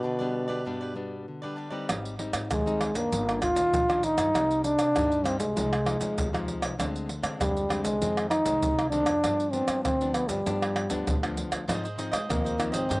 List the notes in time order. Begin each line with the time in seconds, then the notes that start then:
Already playing: B2
0.03 D3 D4 G4 B4 D5
0.19 G3 B3 D4 G4 B4 D5
0.48 G3 B3 D4 G4 B4 D5
0.65 G2 G3 B3 D4 G4 B4 D5
0.81 G4 B4 D5
0.95 G3 B3 D4, muted cavaquinho stroke
1.28 D3
1.42 G3 B3 D4 G4 B4 D5
1.56 D4 G4 B4 D5
1.70 G3 C4 D#4 G4 B4 D5
1.89 G#1 G#2, pandeiro, tamborim, maracas, surdo
2.05 pandeiro, maracas
2.19 G3 C4 D#4, pandeiro
2.33 G#2, pandeiro, tamborim, maracas
2.50 D#2 D#3 G#3, pandeiro, tamborim, maracas, surdo
2.66 G3 C4 D#4, pandeiro, maracas
2.81 pandeiro, tamborim
2.94 F#1 D#3 A#3 D4, pandeiro, maracas
3.12 G1 G2, pandeiro, maracas, surdo
3.29 pandeiro, tamborim, maracas
3.42 F4, pandeiro, tamborim, maracas, surdo
3.55 A#1 D#3 A#3 D4, pandeiro, maracas
3.73 A#1 G2, pandeiro, maracas, surdo
3.89 D#3 A#3 D4, pandeiro, tamborim, maracas
4.03 D#4, pandeiro, maracas
4.17 G2, pandeiro, tamborim, maracas
4.33 C2 C3 G3 A#3 D#4, pandeiro, tamborim, maracas, surdo
4.51 pandeiro, maracas
4.64 D4, pandeiro, maracas
4.79 C3, pandeiro, tamborim, maracas
4.95 G2 G3 A#3 D#4, pandeiro, tamborim, maracas, surdo
5.12 pandeiro, maracas
5.24 G3 A#3 C4 D#4, pandeiro, tamborim, maracas
5.40 C2 G#3, pandeiro, maracas
5.56 C2 C3 F3 G#3 D#4, pandeiro, maracas, surdo
5.73 pandeiro, tamborim, maracas
5.86 F3 G#3 D#4, pandeiro, tamborim
6.00 D#2 F3 G#3 D#4, pandeiro, maracas
6.17 D#2 C3, pandeiro, maracas, surdo
6.33 F3 G#3 D#4, pandeiro, tamborim, maracas
6.48 pandeiro
6.62 C2, pandeiro, tamborim, maracas
6.78 D2 D3 G#3 C4 D4, pandeiro, tamborim, maracas, surdo
6.96 pandeiro, maracas
7.09 pandeiro
7.23 D3 G#3 C4 D4, pandeiro, tamborim, maracas
7.39 F2 D3 G3, pandeiro, tamborim, maracas, surdo
7.57 pandeiro, maracas
7.69 G#3 C4 D4, pandeiro, tamborim
7.84 C2 G#3, pandeiro, maracas
8.01 F2 D#3 G#3 C4, pandeiro, maracas, surdo
8.17 pandeiro, tamborim, maracas
8.30 D#4, pandeiro, tamborim, maracas
8.45 C2 D#3 G#3 C4, pandeiro, maracas
8.63 C2 C3, pandeiro, maracas, surdo
8.79 pandeiro, tamborim, maracas
8.90 D#3 G#3 C4 D4, pandeiro
9.06 F2, pandeiro, tamborim, maracas
9.24 G2 F3 B3 D4, pandeiro, tamborim, maracas, surdo
9.40 pandeiro, maracas
9.52 F3 B3 C4 D4, pandeiro
9.68 G3, pandeiro, tamborim, maracas
9.84 D2 D3 C4, pandeiro, tamborim, maracas, surdo
10.01 F3 B3 D4, pandeiro, maracas
10.14 B3, pandeiro, tamborim, maracas
10.28 G2 F3 G3 B3 D4, pandeiro, maracas
10.46 G2 F3 B3 D4, pandeiro, maracas, surdo
10.62 pandeiro, tamborim, maracas
10.76 pandeiro, tamborim
10.90 D2 F3 B3 D4, pandeiro, maracas
11.07 D2 D3, pandeiro, maracas, surdo
11.23 F3 B3 D4, pandeiro, tamborim, maracas
11.37 pandeiro, maracas
11.52 D2, pandeiro, tamborim, maracas
11.68 G#2 F3 C4 D#4 F4 G#4 C5 D#5, pandeiro, tamborim, maracas, surdo
11.83 G#4 C5 D#5, pandeiro, maracas
11.98 F3 C4 D#4 F4 G#4 C5 D#5, pandeiro, maracas
12.12 G#3 G#4 C5 D#5, pandeiro, tamborim, maracas
12.29 D#2 D#3 F3 A#3 C4 D#4, pandeiro, tamborim, maracas, surdo
12.44 G#4 C5 D#5, pandeiro, maracas
12.58 F3 C4 D#4, muted cavaquinho stroke, pandeiro, tamborim, maracas
12.72 G#2 C4 G#4 C5 D#5, pandeiro, maracas
12.89 G2 D#3 A#3 C4 D#4 G4 C5 D#5, pandeiro, maracas, surdo